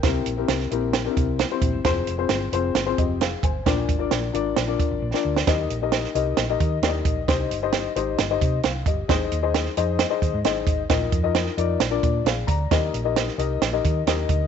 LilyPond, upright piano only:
\new Staff \with { instrumentName = "Upright piano" } { \time 4/4 \key ees \major \tempo 4 = 133 << { g''8 r2. r8 | r2 r8 <g' ees''>8 <aes' f''>8 <c'' aes''>8~ | <c'' aes''>8 r2. r8 | r1 |
r2. f''8 <g' ees''>8~ | <g' ees''>8 r2. r8 | r2 r8 <f' d''>8 <aes' f''>8 <d'' bes''>8~ | <d'' bes''>8 r2. r8 | } \\ { <c' e' g' bes'>8 r16 <c' e' g' bes'>8 r16 <c' e' g' bes'>8 r16 <c' d' e' g' bes'>8. r16 <c' e' g' c''>8 r16 | <c' f' aes' c''>8 r16 <c' f' aes' c''>8 r16 <c' f' aes' c''>8 r16 <c' f' aes' c''>8. r4 | <d' f' bes' d''>8 r16 <d' f' bes' d''>8 r16 <d' f' bes' d''>8 r16 <d' f' bes' d''>8. r16 <d' f' bes' d''>8 r16 | <ees' g' bes' ees''>8 r16 <ees' g' bes' ees''>8 r16 <ees' g' bes' ees''>8 r16 <ees' g' bes' ees''>8 r16 <ees' g' bes' d'' ees''>8. r16 |
<ees' g' c'' ees''>8 r16 <ees' g' c'' ees''>8 r16 <ees' g' c'' ees''>8 r16 <ees' g' c'' ees''>8 r4 r16 | <ees' aes' c'' ees''>8 r16 <ees' aes' c'' ees''>8 r16 <ees' aes' c'' ees''>8 r16 <ees' aes' c'' ees''>8 r16 <ees' aes' c'' ees''>8. r16 | <ees' f' bes' ees''>8 r16 <ees' f' bes' ees''>8 r16 <ees' f' bes' d''>8 r16 <d' f' bes' d''>8 r4 r16 | <ees' g' bes' ees''>8 r16 <ees' g' bes' ees''>8 r16 <ees' g' bes' ees''>8 r16 <ees' g' bes' ees''>8 r16 <ees' g' bes' ees''>8. r16 | } >> }